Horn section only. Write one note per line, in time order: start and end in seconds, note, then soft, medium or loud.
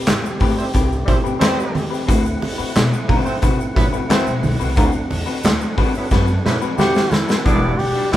0.57 0.68 G3 medium
0.57 0.68 C4 medium
0.57 0.68 E4 medium
0.57 0.68 C5 medium
1.06 1.17 G3 medium
1.06 1.18 C4 medium
1.06 1.17 E4 loud
1.06 1.18 C5 loud
1.39 1.83 G3 loud
1.39 1.83 C4 loud
1.39 1.83 E4 loud
1.39 1.83 C5 loud
3.25 3.36 A3 medium
3.25 3.36 C4 medium
3.25 3.36 F#4 medium
3.25 3.36 C5 loud
3.75 3.86 F#3 medium
3.75 3.86 B3 loud
3.75 3.86 E4 loud
3.75 3.86 B4 loud
4.10 4.32 A3 loud
4.10 4.31 C4 loud
4.10 4.31 F#4 loud
4.10 4.31 C5 loud
5.95 6.06 F#3 medium
5.95 6.06 B3 medium
5.95 6.05 E4 medium
5.95 6.06 B4 medium
6.45 6.56 F#3 medium
6.45 6.56 B3 medium
6.45 6.56 E4 medium
6.45 6.56 B4 loud
6.79 7.00 A3 loud
6.79 7.00 F#4 medium
6.79 7.00 C5 loud
6.79 7.00 F#5 loud
7.45 7.72 B3 loud
7.45 7.72 D4 loud
7.45 7.72 G4 loud
7.45 7.72 D5 loud
7.95 8.09 G3 medium
7.95 8.09 B3 medium
7.95 8.09 F#4 medium
7.95 8.09 B4 medium
8.13 8.17 A3 loud
8.13 8.17 F#4 medium
8.13 8.17 A4 loud